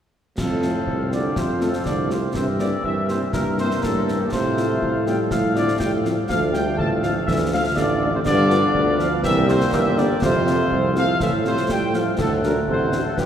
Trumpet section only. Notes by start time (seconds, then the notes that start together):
0.39 A4
1.12 D5
1.37 C5
1.61 A4
1.85 D5
2.11 C5
2.35 C5
2.59 D5
2.84 E5
3.09 C5
3.33 A#4
3.59 C5
3.82 A4
4.20 G4
4.33 C5
5.07 G5
5.31 F5
5.56 D5
5.79 G5
6.04 F5
6.29 F5
6.53 G5
6.77 A5
7.01 F5
7.25 E5
7.52 F5
7.76 D5
8.14 C5
8.25 D5
9.00 F5
9.24 E5
9.48 C5
9.73 E5
9.98 D5
10.23 C5
10.97 F5
11.21 E5
11.46 C5
11.70 G5
11.95 F5
12.20 A4
12.44 A#4
12.69 C5
13.05 A4
13.18 G4